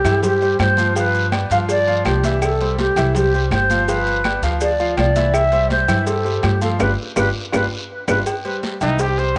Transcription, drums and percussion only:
0.05 cowbell medium
0.05 high conga soft
0.05 low conga medium
0.05 low agogo loud
0.05 short guiro medium
0.05 claves medium
0.05 maracas medium
0.23 cowbell loud
0.23 high conga soft
0.23 low conga medium
0.23 low agogo medium
0.23 long guiro medium
0.23 maracas loud
0.41 high conga soft
0.41 maracas soft
0.59 cowbell medium
0.59 high conga medium
0.59 low timbale medium
0.59 low agogo loud
0.59 short guiro medium
0.59 claves medium
0.59 maracas soft
0.77 high conga medium
0.77 short guiro medium
0.77 maracas medium
0.96 cowbell loud
0.96 low agogo medium
0.96 long guiro medium
0.96 maracas loud
1.13 high conga soft
1.13 low agogo medium
1.13 maracas soft
1.32 cowbell medium
1.32 high conga loud
1.32 low timbale medium
1.32 low agogo loud
1.32 short guiro medium
1.32 claves medium
1.32 maracas soft
1.50 cowbell medium
1.50 high conga soft
1.50 short guiro medium
1.50 maracas medium
1.69 cowbell loud
1.69 high conga soft
1.69 low agogo medium
1.69 long guiro medium
1.69 maracas loud
1.87 high conga soft
1.87 maracas soft
2.05 cowbell medium
2.05 high conga medium
2.05 low timbale medium
2.05 low agogo loud
2.05 short guiro medium
2.05 claves medium
2.05 maracas soft
2.23 cowbell medium
2.23 high conga medium
2.23 short guiro medium
2.23 maracas medium
2.42 cowbell loud
2.42 low agogo loud
2.42 long guiro medium
2.42 claves medium
2.42 maracas loud
2.60 high conga soft
2.60 low agogo medium
2.60 maracas soft
2.79 cowbell medium
2.79 high conga loud
2.79 low timbale medium
2.79 short guiro medium
2.79 maracas soft
2.96 cowbell medium
2.96 high conga soft
2.96 low conga medium
2.96 low agogo loud
2.96 short guiro medium
2.96 claves medium
2.96 maracas medium
3.15 cowbell loud
3.15 high conga soft
3.15 low conga medium
3.15 low agogo medium
3.15 long guiro medium
3.15 maracas loud
3.34 high conga soft
3.34 maracas soft
3.51 cowbell medium
3.51 high conga medium
3.51 low timbale medium
3.51 low agogo loud
3.51 short guiro medium
3.51 claves medium
3.51 maracas soft
3.70 high conga medium
3.70 short guiro medium
3.70 maracas medium
3.88 cowbell loud
3.88 high conga soft
3.88 low agogo medium
3.88 long guiro medium
3.88 maracas medium
4.07 high conga soft
4.07 low agogo medium
4.07 maracas soft
4.24 cowbell medium
4.24 high conga loud
4.24 low timbale medium
4.24 low agogo loud
4.24 short guiro medium
4.24 claves medium
4.24 maracas soft
4.43 cowbell medium
4.43 high conga soft
4.43 short guiro medium
4.43 maracas medium
4.61 cowbell loud
4.61 high conga soft
4.61 low agogo medium
4.61 long guiro medium
4.61 maracas loud
4.79 high conga soft
4.79 maracas soft
4.97 cowbell medium
4.97 high conga medium
4.97 low timbale medium
4.97 low agogo loud
4.97 short guiro medium
4.97 claves medium
4.97 maracas soft
5.16 cowbell medium
5.16 high conga medium
5.16 short guiro medium
5.16 maracas medium
5.34 cowbell loud
5.34 low agogo loud
5.34 long guiro medium
5.34 claves medium
5.34 maracas medium
5.52 high conga soft
5.52 low agogo medium
5.52 maracas soft
5.70 cowbell medium
5.70 high conga loud
5.70 low timbale medium
5.70 short guiro medium
5.70 maracas soft
5.88 cowbell medium
5.88 high conga soft
5.88 low conga medium
5.88 low agogo loud
5.88 short guiro medium
5.88 claves medium
5.88 maracas medium
6.06 cowbell loud
6.06 high conga soft
6.06 low agogo medium
6.06 long guiro medium
6.06 maracas loud
6.26 high conga soft
6.26 maracas soft
6.43 cowbell medium
6.43 high conga medium
6.43 low timbale medium
6.43 low agogo loud
6.43 short guiro medium
6.43 claves medium
6.43 maracas soft
6.62 high conga medium
6.62 short guiro medium
6.62 maracas medium
6.80 cowbell loud
6.80 high conga loud
6.80 high timbale loud
6.80 long guiro loud
6.80 claves loud
6.80 maracas loud
7.16 cowbell loud
7.16 high conga loud
7.16 high timbale medium
7.16 long guiro loud
7.16 claves loud
7.16 maracas loud
7.53 cowbell loud
7.53 high conga medium
7.53 high timbale loud
7.53 long guiro loud
7.53 claves loud
7.53 maracas loud
8.08 cowbell loud
8.08 high conga loud
8.08 high timbale loud
8.08 long guiro loud
8.08 claves loud
8.08 maracas loud
8.26 cowbell loud
8.26 low agogo loud
8.26 long guiro medium
8.26 maracas medium
8.45 high conga soft
8.45 low agogo medium
8.45 maracas soft
8.63 cowbell medium
8.63 high conga medium
8.63 low timbale medium
8.63 short guiro medium
8.63 maracas soft
8.81 cowbell medium
8.81 high conga soft
8.81 low conga medium
8.81 low agogo loud
8.81 short guiro medium
8.81 maracas medium
8.99 cowbell loud
8.99 high conga soft
8.99 low agogo medium
8.99 long guiro medium
8.99 maracas loud
9.18 high conga soft
9.18 maracas soft

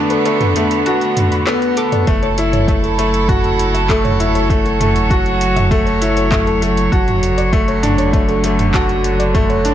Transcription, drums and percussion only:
0.10 closed hi-hat soft
0.25 closed hi-hat soft
0.41 closed hi-hat soft
0.41 mid tom medium
0.56 closed hi-hat medium
0.71 closed hi-hat soft
0.86 closed hi-hat soft
1.01 closed hi-hat soft
1.17 closed hi-hat medium
1.17 mid tom medium
1.32 closed hi-hat soft
1.47 clap medium
1.47 closed hi-hat soft
1.62 closed hi-hat soft
1.77 closed hi-hat medium
1.92 closed hi-hat soft
1.92 mid tom medium
2.07 kick loud
2.07 closed hi-hat soft
2.23 closed hi-hat soft
2.38 closed hi-hat medium
2.53 closed hi-hat soft
2.53 mid tom medium
2.68 kick loud
2.68 closed hi-hat soft
2.84 closed hi-hat soft
2.99 closed hi-hat medium
3.14 closed hi-hat soft
3.29 kick loud
3.29 closed hi-hat soft
3.29 mid tom medium
3.44 closed hi-hat soft
3.59 closed hi-hat medium
3.75 closed hi-hat soft
3.89 kick loud
3.89 clap medium
3.89 closed hi-hat soft
4.05 closed hi-hat soft
4.05 mid tom medium
4.20 closed hi-hat medium
4.35 closed hi-hat soft
4.50 kick loud
4.50 closed hi-hat soft
4.66 closed hi-hat soft
4.81 closed hi-hat medium
4.81 mid tom medium
4.96 closed hi-hat soft
5.10 kick loud
5.10 closed hi-hat soft
5.26 closed hi-hat soft
5.41 closed hi-hat medium
5.57 closed hi-hat soft
5.57 mid tom medium
5.71 kick loud
5.71 closed hi-hat soft
5.87 closed hi-hat soft
6.02 closed hi-hat medium
6.17 closed hi-hat soft
6.32 kick loud
6.32 clap medium
6.32 closed hi-hat soft
6.32 mid tom medium
6.47 closed hi-hat soft
6.62 closed hi-hat medium
6.77 closed hi-hat soft
6.92 kick loud
6.92 closed hi-hat soft
7.08 closed hi-hat soft
7.08 mid tom medium
7.23 closed hi-hat medium
7.38 closed hi-hat soft
7.53 kick loud
7.53 closed hi-hat soft
7.68 closed hi-hat soft
7.83 closed hi-hat medium
7.83 mid tom medium
7.98 closed hi-hat soft
8.13 kick loud
8.13 closed hi-hat soft
8.29 closed hi-hat soft
8.44 closed hi-hat medium
8.59 closed hi-hat soft
8.59 mid tom medium
8.74 kick loud
8.74 clap medium
8.74 closed hi-hat soft
8.89 closed hi-hat soft
9.04 closed hi-hat medium
9.20 closed hi-hat soft
9.35 kick loud
9.35 closed hi-hat soft
9.35 mid tom medium
9.50 closed hi-hat soft
9.65 closed hi-hat medium

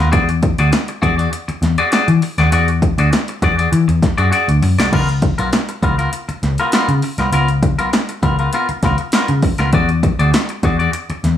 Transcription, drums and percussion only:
0.00 snare soft
0.13 kick loud
0.13 closed hi-hat medium
0.29 closed hi-hat soft
0.43 kick loud
0.43 closed hi-hat medium
0.58 closed hi-hat medium
0.73 snare loud
0.73 closed hi-hat medium
0.88 closed hi-hat medium
1.03 kick loud
1.03 closed hi-hat medium
1.19 closed hi-hat soft
1.33 closed hi-hat loud
1.49 closed hi-hat medium
1.63 snare soft
1.63 closed hi-hat medium
1.78 closed hi-hat soft
1.92 snare loud
1.92 closed hi-hat medium
2.08 closed hi-hat medium
2.22 open hi-hat medium
2.38 snare soft
2.38 closed hi-hat soft
2.52 closed hi-hat loud
2.68 closed hi-hat soft
2.82 kick loud
2.82 closed hi-hat medium
2.98 closed hi-hat medium
3.13 snare loud
3.13 closed hi-hat medium
3.28 closed hi-hat medium
3.42 kick medium
3.42 closed hi-hat medium
3.59 closed hi-hat soft
3.73 closed hi-hat loud
3.89 closed hi-hat medium
4.03 kick medium
4.03 snare soft
4.03 closed hi-hat medium
4.18 closed hi-hat soft
4.33 closed hi-hat loud
4.49 closed hi-hat medium
4.62 open hi-hat medium
4.78 snare loud
4.78 closed hi-hat soft
4.93 kick loud
4.93 crash medium
5.09 closed hi-hat soft
5.22 kick loud
5.22 closed hi-hat medium
5.38 closed hi-hat medium
5.53 snare loud
5.53 closed hi-hat medium
5.69 closed hi-hat medium
5.83 kick medium
5.83 closed hi-hat medium
5.99 closed hi-hat soft
6.13 closed hi-hat loud
6.29 closed hi-hat medium
6.43 snare soft
6.43 closed hi-hat medium
6.58 closed hi-hat medium
6.72 snare medium
6.72 closed hi-hat loud
6.89 closed hi-hat medium
7.02 open hi-hat medium
7.18 snare soft
7.18 closed hi-hat medium
7.33 closed hi-hat loud
7.48 closed hi-hat soft
7.63 kick loud
7.63 closed hi-hat medium
7.79 closed hi-hat medium
7.93 snare loud
7.93 closed hi-hat medium
8.09 closed hi-hat medium
8.23 kick loud
8.23 closed hi-hat medium
8.39 closed hi-hat soft
8.53 closed hi-hat loud
8.69 closed hi-hat medium
8.83 kick medium
8.83 snare soft
8.83 closed hi-hat medium
8.98 closed hi-hat medium
9.12 snare loud
9.12 closed hi-hat loud
9.28 closed hi-hat medium
9.42 kick loud
9.42 open hi-hat medium
9.58 snare soft
9.58 closed hi-hat medium
9.73 kick loud
9.73 closed hi-hat medium
9.89 closed hi-hat soft
10.03 kick loud
10.03 closed hi-hat medium
10.20 closed hi-hat medium
10.34 snare loud
10.34 closed hi-hat medium
10.49 closed hi-hat medium
10.63 kick loud
10.63 closed hi-hat medium
10.80 closed hi-hat soft
10.93 closed hi-hat loud
11.10 closed hi-hat soft
11.24 snare soft
11.24 closed hi-hat medium

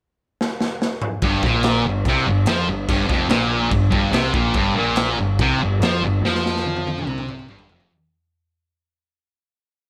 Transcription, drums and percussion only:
0.41 snare medium
0.60 snare medium
0.82 snare medium
1.02 mid tom loud
1.22 kick loud
1.22 crash medium
1.43 kick loud
1.43 snare soft
1.63 snare loud
1.63 crash medium
2.05 kick loud
2.05 crash medium
2.46 snare loud
2.46 crash medium
2.89 kick loud
2.89 crash medium
3.10 kick loud
3.10 snare soft
3.29 snare loud
3.29 crash medium
3.71 kick medium
3.71 crash medium
3.92 kick loud
4.13 snare loud
4.13 crash medium
4.34 kick loud
4.54 kick loud
4.54 crash medium
4.96 snare loud
4.96 crash medium
5.39 kick loud
5.39 crash medium
5.82 snare loud
5.82 crash medium
6.25 snare medium
6.35 snare medium
6.46 snare medium
6.56 snare medium
6.66 high tom medium
6.76 high tom medium
6.87 high tom medium
6.98 mid tom medium
7.07 mid tom medium
7.18 mid tom medium
7.29 mid tom loud
7.39 mid tom medium
7.49 mid tom loud
7.59 floor tom medium
7.69 floor tom loud
7.80 floor tom loud

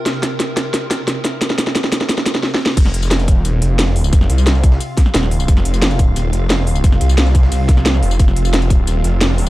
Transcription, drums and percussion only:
0.06 snare medium
0.06 closed hi-hat medium
0.23 snare medium
0.23 closed hi-hat loud
0.40 snare medium
0.40 closed hi-hat medium
0.57 snare medium
0.57 closed hi-hat loud
0.74 snare medium
0.74 closed hi-hat medium
0.91 snare medium
0.91 closed hi-hat medium
1.08 snare medium
1.08 closed hi-hat medium
1.25 snare medium
1.25 closed hi-hat loud
1.42 snare medium
1.42 closed hi-hat medium
1.50 snare medium
1.58 snare medium
1.58 closed hi-hat loud
1.67 snare medium
1.75 snare loud
1.75 closed hi-hat medium
1.84 snare medium
1.92 snare loud
1.92 closed hi-hat loud
2.01 snare medium
2.09 snare loud
2.09 closed hi-hat medium
2.18 snare medium
2.26 snare loud
2.26 closed hi-hat loud
2.35 snare medium
2.43 snare medium
2.54 snare medium
2.66 snare loud
2.77 kick loud
2.77 closed hi-hat medium
2.77 crash loud
2.77 tambourine medium
2.86 snare soft
2.94 closed hi-hat loud
2.94 closed hi-hat medium
3.03 closed hi-hat soft
3.03 tambourine medium
3.11 snare loud
3.11 closed hi-hat medium
3.11 tambourine soft
3.20 closed hi-hat soft
3.20 tambourine soft
3.28 kick loud
3.28 closed hi-hat medium
3.28 closed hi-hat loud
3.28 tambourine soft
3.45 closed hi-hat medium
3.45 tambourine soft
3.62 closed hi-hat medium
3.62 closed hi-hat loud
3.79 snare loud
3.79 closed hi-hat medium
3.79 tambourine soft
3.87 snare soft
3.96 closed hi-hat medium
3.96 open hi-hat medium
4.04 tambourine medium
4.13 kick loud
4.13 closed hi-hat medium
4.13 tambourine soft
4.21 snare soft
4.30 closed hi-hat medium
4.38 tambourine medium
4.47 snare loud
4.47 closed hi-hat medium
4.47 tambourine soft
4.55 snare soft
4.55 tambourine soft
4.64 kick loud
4.64 closed hi-hat medium
4.64 closed hi-hat loud
4.64 tambourine soft
4.72 snare medium
4.81 closed hi-hat medium
4.81 open hi-hat medium
4.81 tambourine soft
4.97 kick loud
4.97 snare soft
4.97 closed hi-hat medium
5.06 snare soft
5.14 snare loud
5.14 closed hi-hat medium
5.14 tambourine soft
5.23 snare medium
5.23 snare soft
5.31 closed hi-hat medium
5.31 open hi-hat medium
5.40 tambourine medium
5.48 kick loud
5.48 closed hi-hat medium
5.48 tambourine soft
5.57 snare soft
5.65 closed hi-hat medium
5.74 closed hi-hat soft
5.74 tambourine medium
5.82 snare loud
5.82 closed hi-hat medium
5.82 tambourine soft
5.91 closed hi-hat soft
5.91 tambourine soft
5.99 kick loud
5.99 closed hi-hat medium
5.99 tambourine soft
6.16 closed hi-hat medium
6.16 tambourine soft
6.33 closed hi-hat medium
6.50 snare loud
6.50 closed hi-hat medium
6.50 tambourine soft
6.58 snare soft
6.67 closed hi-hat medium
6.67 open hi-hat medium
6.75 tambourine medium
6.84 kick loud
6.84 closed hi-hat medium
6.84 tambourine soft
6.92 snare soft
7.01 closed hi-hat medium
7.01 tambourine soft
7.09 tambourine medium
7.18 snare loud
7.18 closed hi-hat medium
7.18 tambourine soft
7.26 snare soft
7.26 tambourine soft
7.35 kick loud
7.35 closed hi-hat medium
7.35 tambourine soft
7.43 snare medium
7.52 closed hi-hat medium
7.52 open hi-hat medium
7.52 tambourine soft
7.69 kick loud
7.69 snare soft
7.69 closed hi-hat medium
7.77 snare soft
7.86 snare loud
7.86 closed hi-hat medium
7.86 tambourine soft
7.94 snare medium
7.94 snare soft
8.03 closed hi-hat medium
8.03 open hi-hat medium
8.11 tambourine medium
8.19 kick loud
8.19 closed hi-hat medium
8.19 tambourine medium
8.28 snare soft
8.36 closed hi-hat medium
8.45 closed hi-hat soft
8.45 tambourine medium
8.53 snare loud
8.53 closed hi-hat medium
8.53 tambourine soft
8.62 closed hi-hat soft
8.62 tambourine soft
8.70 kick loud
8.70 closed hi-hat medium
8.70 tambourine soft
8.87 closed hi-hat medium
8.87 tambourine medium
9.04 closed hi-hat medium
9.21 snare loud
9.21 closed hi-hat medium
9.21 tambourine soft
9.30 snare soft
9.38 closed hi-hat medium
9.38 open hi-hat medium

